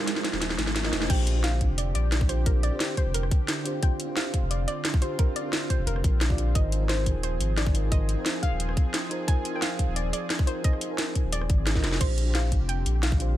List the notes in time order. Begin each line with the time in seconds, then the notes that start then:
Already playing: F3 C4 D#4 G#4 C5 F5, riser
0.00 F4 A#4 C5
0.07 snare, closed hi-hat
0.16 snare
0.25 snare, closed hi-hat
0.33 D#1, snare
0.42 snare, closed hi-hat
0.50 snare
0.59 G#1, snare, closed hi-hat
0.67 snare
0.76 snare, closed hi-hat
0.83 D#4 F4 A#4 D#5, snare
0.93 F1, snare, closed hi-hat
1.02 snare
1.08 A#1 D3 C4 D4 F4 G4 C5 G5, kick, closed hi-hat, crash
1.27 closed hi-hat
1.32 D4 F4
1.37 G4 C5
1.44 F5, snare, closed hi-hat
1.61 kick, closed hi-hat
1.70 F1
1.78 D5, closed hi-hat
1.95 A#1 D5, closed hi-hat
2.12 snare, closed hi-hat
2.21 kick, cross-stick
2.27 D4 F4 G4 C5, closed hi-hat
2.44 D4 F4 G4 A#4, kick, closed hi-hat
2.63 D5, closed hi-hat
2.69 D4 F4
2.73 G4 C5
2.80 snare, closed hi-hat
2.97 C5, kick, closed hi-hat
3.06 F1
3.14 A#4, closed hi-hat
3.23 cross-stick
3.31 kick, closed hi-hat
3.48 snare, closed hi-hat
3.64 D4 F4 G4 C5, closed hi-hat
3.81 D4 F4 G4 C5 G5, kick, closed hi-hat
4.00 closed hi-hat
4.05 D4 F4
4.10 G4 C5
4.17 F5, snare, closed hi-hat
4.34 kick, closed hi-hat
4.43 F1
4.51 D5, closed hi-hat
4.68 D5, closed hi-hat
4.85 snare, closed hi-hat
4.94 kick, cross-stick
5.00 D4 F4 G4 C5, closed hi-hat
5.17 D4 F4 G4 A#4 C5, kick, closed hi-hat
5.36 D5, closed hi-hat
5.42 D4 F4
5.46 G4 C5
5.53 snare, closed hi-hat
5.70 C5, kick, closed hi-hat
5.79 F1
5.87 F1 A#4, closed hi-hat
5.96 cross-stick
6.04 A#1, kick, closed hi-hat
6.21 snare, closed hi-hat
6.28 D4 F4 G4 D5, kick
6.38 closed hi-hat
6.54 G#1 F3 D#4 F4 G#4 A#4 C5 D#5, kick, closed hi-hat
6.72 closed hi-hat
6.78 D#4 F4
6.82 A#4 C5
6.89 C5, snare, closed hi-hat
7.06 kick, closed hi-hat
7.15 D#1
7.23 C5, closed hi-hat
7.41 G#1, closed hi-hat
7.57 D5, snare, closed hi-hat
7.67 kick, cross-stick
7.73 D#4 F4 A#4 C5, closed hi-hat
7.90 D#4 F4 A#4 C5 D#5, kick, closed hi-hat
8.09 closed hi-hat
8.14 D#4 F4
8.18 A#4 C5
8.26 snare, closed hi-hat
8.43 F5, kick, closed hi-hat
8.52 D#1
8.60 closed hi-hat
8.69 cross-stick
8.77 kick, closed hi-hat
8.94 snare, closed hi-hat
9.09 D#4 F4 A#4 C5, closed hi-hat
9.26 D#4 F4 A#4 C5 G#5, kick, closed hi-hat
9.45 closed hi-hat
9.51 D#4 F4
9.55 A#4 C5 G5
9.62 F5, snare, closed hi-hat
9.79 kick, closed hi-hat
9.88 D#1
9.96 D5, closed hi-hat
10.13 D5, closed hi-hat
10.30 snare, closed hi-hat
10.39 kick, cross-stick
10.46 D#4 F4 A#4 C5, closed hi-hat
10.63 D#4 F4 A#4 C5 D#5, kick, closed hi-hat
10.73 cross-stick
10.81 closed hi-hat
10.87 D#4 F4
10.91 A#4 C5
10.98 snare, closed hi-hat
11.15 kick, closed hi-hat
11.24 D#1
11.32 D5, closed hi-hat
11.41 cross-stick
11.50 G#1, kick, closed hi-hat
11.67 snare, closed hi-hat
11.74 D#4 F4 A#4 D#5, kick, snare
11.84 F1, snare, closed hi-hat
11.93 snare
11.99 A#1 D3 C4 D4 F4 G4 C5, kick, closed hi-hat, crash
12.18 closed hi-hat
12.23 D4 F4
12.28 G4 C5
12.35 F5, snare, closed hi-hat
12.52 kick, closed hi-hat
12.61 F1
12.69 G5, closed hi-hat
12.86 A#1, closed hi-hat
13.03 F5, snare, closed hi-hat
13.12 kick, cross-stick
13.18 D4 F4 G4 C5, closed hi-hat